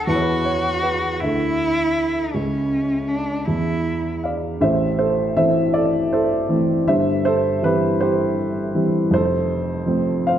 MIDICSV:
0, 0, Header, 1, 3, 480
1, 0, Start_track
1, 0, Tempo, 753769
1, 46, Time_signature, 6, 3, 24, 8
1, 6614, End_track
2, 0, Start_track
2, 0, Title_t, "Upright piano"
2, 0, Program_c, 0, 0
2, 0, Control_c, 0, 64, 127
2, 46, Note_on_c, 0, 40, 57
2, 53, Note_on_c, 0, 71, 64
2, 54, Control_c, 0, 64, 0
2, 57, Note_on_c, 0, 64, 48
2, 92, Note_on_c, 0, 73, 59
2, 95, Note_off_c, 0, 71, 0
2, 136, Note_off_c, 0, 73, 0
2, 137, Note_on_c, 0, 71, 70
2, 178, Control_c, 0, 64, 127
2, 285, Note_on_c, 0, 73, 73
2, 292, Note_off_c, 0, 71, 0
2, 529, Note_on_c, 0, 71, 64
2, 533, Note_off_c, 0, 73, 0
2, 746, Note_off_c, 0, 40, 0
2, 747, Note_off_c, 0, 64, 0
2, 772, Note_on_c, 0, 38, 57
2, 775, Note_off_c, 0, 71, 0
2, 775, Control_c, 0, 64, 0
2, 782, Note_on_c, 0, 76, 58
2, 785, Note_on_c, 0, 69, 43
2, 904, Control_c, 0, 64, 127
2, 1469, Note_off_c, 0, 38, 0
2, 1490, Note_on_c, 0, 37, 51
2, 1497, Control_c, 0, 64, 0
2, 1625, Control_c, 0, 64, 127
2, 2189, Note_off_c, 0, 37, 0
2, 2194, Note_off_c, 0, 69, 0
2, 2213, Note_on_c, 0, 40, 53
2, 2218, Control_c, 0, 64, 0
2, 2335, Control_c, 0, 64, 127
2, 2433, Note_off_c, 0, 76, 0
2, 2697, Note_on_c, 0, 77, 64
2, 2708, Note_on_c, 0, 74, 53
2, 2912, Note_off_c, 0, 40, 0
2, 2918, Note_off_c, 0, 77, 0
2, 2924, Note_off_c, 0, 74, 0
2, 2934, Note_on_c, 0, 33, 61
2, 2936, Note_on_c, 0, 45, 64
2, 2938, Note_on_c, 0, 76, 82
2, 2941, Control_c, 0, 64, 0
2, 2953, Note_on_c, 0, 72, 69
2, 3070, Control_c, 0, 64, 127
2, 3159, Note_off_c, 0, 76, 0
2, 3166, Note_off_c, 0, 72, 0
2, 3175, Note_on_c, 0, 72, 80
2, 3180, Note_on_c, 0, 69, 60
2, 3400, Note_off_c, 0, 69, 0
2, 3417, Note_on_c, 0, 52, 51
2, 3417, Note_on_c, 0, 76, 90
2, 3418, Note_off_c, 0, 72, 0
2, 3419, Note_on_c, 0, 57, 48
2, 3427, Note_on_c, 0, 72, 62
2, 3428, Note_on_c, 0, 60, 53
2, 3639, Note_off_c, 0, 76, 0
2, 3644, Note_off_c, 0, 72, 0
2, 3653, Note_on_c, 0, 74, 84
2, 3661, Note_on_c, 0, 69, 66
2, 3876, Note_off_c, 0, 74, 0
2, 3880, Note_off_c, 0, 69, 0
2, 3881, Note_off_c, 0, 52, 0
2, 3882, Note_off_c, 0, 57, 0
2, 3886, Note_off_c, 0, 60, 0
2, 3901, Note_on_c, 0, 72, 75
2, 3907, Note_on_c, 0, 69, 68
2, 4133, Note_on_c, 0, 52, 48
2, 4137, Note_on_c, 0, 57, 47
2, 4138, Note_on_c, 0, 60, 52
2, 4349, Note_off_c, 0, 33, 0
2, 4349, Note_off_c, 0, 45, 0
2, 4354, Note_off_c, 0, 69, 0
2, 4366, Note_off_c, 0, 52, 0
2, 4368, Note_off_c, 0, 57, 0
2, 4368, Note_off_c, 0, 60, 0
2, 4377, Note_on_c, 0, 31, 67
2, 4378, Note_off_c, 0, 72, 0
2, 4379, Note_on_c, 0, 76, 88
2, 4381, Control_c, 0, 64, 0
2, 4382, Note_on_c, 0, 43, 60
2, 4388, Note_on_c, 0, 72, 67
2, 4494, Control_c, 0, 64, 127
2, 4599, Note_off_c, 0, 76, 0
2, 4604, Note_off_c, 0, 72, 0
2, 4617, Note_on_c, 0, 72, 92
2, 4628, Note_on_c, 0, 69, 73
2, 4838, Note_off_c, 0, 72, 0
2, 4844, Note_off_c, 0, 69, 0
2, 4853, Note_on_c, 0, 55, 43
2, 4855, Note_on_c, 0, 52, 43
2, 4859, Note_on_c, 0, 60, 52
2, 4865, Note_on_c, 0, 71, 85
2, 4875, Note_on_c, 0, 67, 60
2, 5087, Note_off_c, 0, 67, 0
2, 5098, Note_on_c, 0, 72, 84
2, 5105, Note_off_c, 0, 71, 0
2, 5108, Note_on_c, 0, 67, 61
2, 5317, Note_off_c, 0, 55, 0
2, 5318, Note_off_c, 0, 52, 0
2, 5320, Note_off_c, 0, 60, 0
2, 5569, Note_on_c, 0, 55, 45
2, 5570, Note_on_c, 0, 52, 51
2, 5574, Note_on_c, 0, 60, 54
2, 5608, Note_off_c, 0, 72, 0
2, 5613, Note_off_c, 0, 67, 0
2, 5786, Note_off_c, 0, 31, 0
2, 5789, Note_off_c, 0, 43, 0
2, 5798, Note_on_c, 0, 29, 58
2, 5802, Note_off_c, 0, 52, 0
2, 5802, Note_off_c, 0, 55, 0
2, 5802, Note_on_c, 0, 41, 69
2, 5804, Note_off_c, 0, 60, 0
2, 5818, Control_c, 0, 64, 0
2, 5818, Note_on_c, 0, 72, 90
2, 5834, Note_on_c, 0, 69, 68
2, 5940, Control_c, 0, 64, 127
2, 6282, Note_on_c, 0, 53, 50
2, 6283, Note_on_c, 0, 57, 43
2, 6287, Note_on_c, 0, 60, 55
2, 6514, Note_off_c, 0, 69, 0
2, 6538, Note_on_c, 0, 77, 78
2, 6541, Note_off_c, 0, 72, 0
2, 6550, Note_on_c, 0, 72, 69
2, 6614, Note_off_c, 0, 29, 0
2, 6614, Note_off_c, 0, 41, 0
2, 6614, Note_off_c, 0, 53, 0
2, 6614, Note_off_c, 0, 57, 0
2, 6614, Note_off_c, 0, 60, 0
2, 6614, Note_off_c, 0, 72, 0
2, 6614, Note_off_c, 0, 77, 0
2, 6614, End_track
3, 0, Start_track
3, 0, Title_t, "Cello"
3, 0, Program_c, 1, 42
3, 52, Note_on_c, 1, 66, 82
3, 768, Note_on_c, 1, 64, 90
3, 778, Note_off_c, 1, 66, 0
3, 1485, Note_on_c, 1, 61, 70
3, 1495, Note_off_c, 1, 64, 0
3, 1963, Note_on_c, 1, 62, 73
3, 1973, Note_off_c, 1, 61, 0
3, 2200, Note_on_c, 1, 64, 67
3, 2209, Note_off_c, 1, 62, 0
3, 2686, Note_off_c, 1, 64, 0
3, 6614, End_track
0, 0, End_of_file